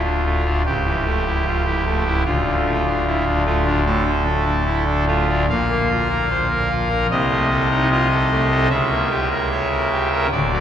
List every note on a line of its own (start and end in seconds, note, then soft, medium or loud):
0.00 0.62 D1 medium
0.00 0.62 D2 medium
0.00 0.62 F4 medium
0.05 0.23 D4 medium
0.25 0.44 A3 medium
0.46 0.63 D4 medium
0.66 2.23 C#1 medium
0.66 2.23 C#2 medium
0.66 2.23 G4 medium
0.86 1.04 E3 medium
1.06 1.24 A3 medium
1.26 1.44 E4 medium
1.46 1.63 F4 soft
1.66 1.84 E4 medium
1.86 2.04 A3 medium
2.06 2.23 E4 medium
2.25 5.46 D1 medium
2.25 5.46 D2 medium
2.25 3.43 F4 loud
2.46 2.64 D3 medium
2.66 2.84 A3 medium
2.86 3.05 D4 medium
3.07 3.24 E4 soft
3.26 3.44 D4 medium
3.46 3.64 A3 medium
3.46 3.80 F4 medium
3.66 3.84 D4 medium
3.86 4.04 A2 medium
3.86 5.04 A4 loud
4.05 4.24 D3 medium
4.25 4.44 A3 medium
4.45 4.64 D4 medium
4.66 4.84 E4 medium
4.86 5.06 D4 medium
5.07 5.26 A3 medium
5.07 5.43 F4 medium
5.28 5.46 D4 medium
5.50 7.06 A#1 medium
5.50 7.07 A#2 medium
5.50 7.07 F5 loud
5.71 5.88 A#3 medium
5.91 6.08 F4 medium
6.10 6.28 A#4 medium
6.30 6.47 C5 soft
6.51 6.68 A#4 medium
6.71 6.88 F4 medium
6.90 7.08 A#4 medium
7.11 8.67 C2 medium
7.11 8.67 C3 medium
7.11 7.89 D#5 loud
7.31 7.49 A3 medium
7.50 7.69 A4 medium
7.70 7.89 D#4 medium
7.91 8.08 F4 medium
7.91 8.69 D#5 loud
8.11 8.29 A4 medium
8.31 8.49 A3 medium
8.51 8.68 A4 medium
8.70 10.27 C#2 medium
8.70 10.27 C#3 medium
8.70 10.27 E5 loud
8.91 9.09 A#3 medium
9.11 9.29 G4 medium
9.31 9.49 A#4 medium
9.52 9.68 C#5 medium
9.71 9.89 A#4 medium
9.92 10.10 G4 medium
10.13 10.29 A#4 medium
10.31 10.60 D1 medium
10.31 10.60 D2 medium
10.31 10.60 D5 loud
10.52 10.60 F#3 medium